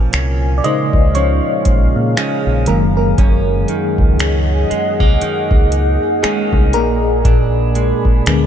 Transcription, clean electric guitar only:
0.00 2.67 A#2 medium
0.00 1.14 F3 medium
0.00 0.13 C#4 medium
0.13 2.18 C#4 medium
0.64 2.16 G#3 medium
1.15 2.16 F3 medium
2.17 2.79 F3 medium
2.17 2.80 G#3 medium
2.17 3.18 C#4 medium
2.67 3.17 F#2 medium
3.18 6.74 F#2 medium
3.18 4.19 C#4 medium
3.69 5.20 D#3 medium
4.20 6.23 C#4 medium
4.70 5.00 G#3 medium
5.00 6.22 A#3 soft
5.21 6.22 D#3 medium
6.23 6.86 D#3 medium
6.23 7.79 A#3 medium
6.23 6.86 C#4 medium
6.74 7.24 A#2 medium
7.25 8.46 A#2 medium
7.25 8.25 D4 medium
7.76 8.46 G#3 medium
8.27 8.46 D4 medium

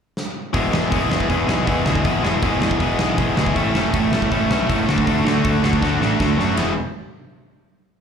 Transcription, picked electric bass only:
0.54 0.68 E1 medium
0.72 0.86 E1 medium
0.92 1.06 E1 medium
1.10 1.24 E1 medium
1.29 1.43 E1 medium
1.48 1.61 B1 medium
1.68 1.81 E1 medium
1.86 1.99 D2 medium
2.05 2.18 E1 medium
2.23 2.37 E1 medium
2.43 2.56 E1 medium
2.61 2.75 E1 medium
2.80 2.94 E1 loud
2.99 3.13 B1 medium
3.18 3.32 E1 medium
3.36 3.50 D2 medium
3.56 3.70 E1 medium
3.75 3.88 E1 medium
3.94 4.07 E1 medium
4.12 4.26 E1 medium
4.32 4.45 E1 medium
4.50 4.64 B1 medium
4.69 4.83 E1 medium
4.89 5.02 D2 medium
5.08 5.21 D2 medium
5.26 5.39 D2 medium
5.45 5.58 D2 medium
5.63 5.77 D2 medium
5.82 5.96 D2 medium
6.00 6.14 A1 medium
6.20 6.33 D2 medium
6.38 6.51 F#2 medium
6.57 6.75 E1 medium

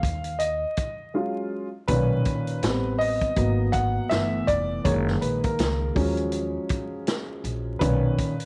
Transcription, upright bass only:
0.03 0.63 D#2 medium
1.89 2.19 B1 loud
2.63 3.23 A1 medium
3.37 3.97 G#1 loud
4.11 4.41 G1 medium
4.49 4.78 F1 medium
4.85 5.15 F#1 loud
5.59 5.89 C#2 medium
5.96 6.56 D#2 medium
7.44 7.74 A#1 medium
7.81 8.11 B1 loud

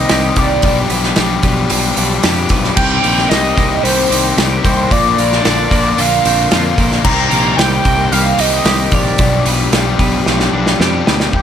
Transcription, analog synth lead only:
0.00 0.37 D#5 loud
0.39 0.88 D5 medium
2.76 3.30 G5 loud
3.29 3.85 D#5 loud
3.83 4.37 C5 medium
4.65 4.93 C5 medium
4.92 5.18 D5 loud
5.18 6.02 D5 loud
6.00 6.79 F5 loud
7.04 7.58 A#5 loud
7.57 8.13 G5 loud
8.12 8.42 F5 loud
8.40 8.95 D#5 loud
8.93 9.46 D5 medium
11.36 11.42 G4 medium

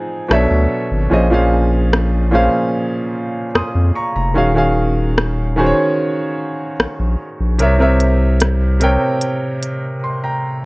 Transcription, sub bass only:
0.30 0.47 B1 loud
0.51 0.67 D2 medium
0.91 1.08 G#1 loud
1.11 2.49 A#1 medium
3.55 3.63 F2 soft
3.75 3.92 F2 medium
4.15 4.37 F1 medium
4.36 5.73 D#1 loud
6.79 6.87 A#1 soft
6.99 7.16 A#1 medium
7.40 7.61 A#1 medium
7.60 8.98 C2 loud

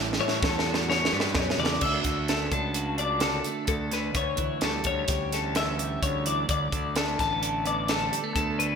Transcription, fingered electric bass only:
0.00 0.17 A1 loud
0.19 0.41 A2 medium
0.42 1.08 E2 medium
1.13 1.34 G2 medium
1.35 1.57 F#2 medium
1.58 1.80 E2 medium
1.82 2.04 D2 medium
2.05 2.48 D2 medium
2.52 3.42 C#2 medium
3.68 4.11 D2 medium
4.14 4.36 D2 loud
4.39 4.50 D2 medium
4.62 4.84 D2 medium
4.86 5.07 D2 medium
5.09 5.98 D2 medium
6.02 6.45 D2 medium
6.49 6.71 D2 loud
6.72 7.15 D2 medium
7.20 8.09 A1 medium
8.35 8.75 D2 medium

